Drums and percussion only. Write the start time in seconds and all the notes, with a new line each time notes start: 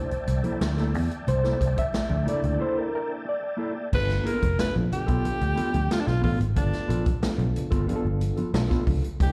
0.11 closed hi-hat
0.27 closed hi-hat, high conga
0.43 closed hi-hat, high conga
0.60 snare, closed hi-hat, muted conga
0.76 snare, closed hi-hat, muted conga
0.94 open hi-hat, high conga
1.11 closed hi-hat
1.27 closed hi-hat, muted conga, low conga
1.44 snare, closed hi-hat
1.61 kick, closed hi-hat
1.76 kick, closed hi-hat, high conga
1.93 snare, closed hi-hat, muted conga
2.10 muted conga, high conga
2.27 closed hi-hat, low conga
2.42 closed hi-hat, low conga
3.93 kick, crash, muted conga, low conga
4.09 snare, closed hi-hat, muted conga
4.26 closed hi-hat
4.42 kick, closed hi-hat, high conga
4.59 snare, closed hi-hat, muted conga
4.76 high conga
4.92 closed hi-hat, low conga
5.08 kick, closed hi-hat
5.25 closed hi-hat, high conga
5.41 closed hi-hat, muted conga
5.57 closed hi-hat, high conga
5.74 closed hi-hat, high conga
5.91 snare, closed hi-hat
6.07 snare, closed hi-hat, muted conga
6.24 kick, open hi-hat, high conga
6.41 closed hi-hat
6.56 kick, closed hi-hat, low conga
6.73 snare, closed hi-hat, muted conga
6.90 closed hi-hat
7.06 kick, closed hi-hat, high conga
7.23 snare, closed hi-hat
7.39 closed hi-hat, high conga
7.56 closed hi-hat, low conga
7.72 kick, closed hi-hat
7.89 closed hi-hat, muted conga, high conga
8.07 muted conga
8.21 closed hi-hat, high conga
8.37 closed hi-hat, high conga
8.54 snare, closed hi-hat
8.71 kick, snare, closed hi-hat, muted conga
8.87 kick, open hi-hat, high conga
9.04 closed hi-hat
9.20 kick, closed hi-hat, muted conga, low conga